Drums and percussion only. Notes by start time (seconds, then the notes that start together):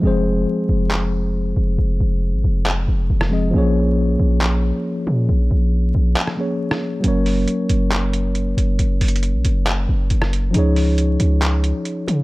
0.91 clap
2.66 clap
3.21 cross-stick
4.41 clap
6.16 clap
6.27 cross-stick
6.71 cross-stick
7.04 closed hi-hat
7.26 open hi-hat
7.48 closed hi-hat
7.69 closed hi-hat
7.92 clap, closed hi-hat
8.13 closed hi-hat
8.35 closed hi-hat
8.58 closed hi-hat
8.79 closed hi-hat
9.01 closed hi-hat, open hi-hat
9.08 closed hi-hat
9.16 closed hi-hat
9.23 closed hi-hat
9.45 closed hi-hat
9.67 clap, closed hi-hat
10.10 closed hi-hat
10.22 cross-stick
10.33 closed hi-hat
10.54 closed hi-hat
10.76 open hi-hat
10.98 closed hi-hat
11.20 closed hi-hat
11.42 clap, closed hi-hat
11.64 closed hi-hat
11.85 closed hi-hat
12.08 closed hi-hat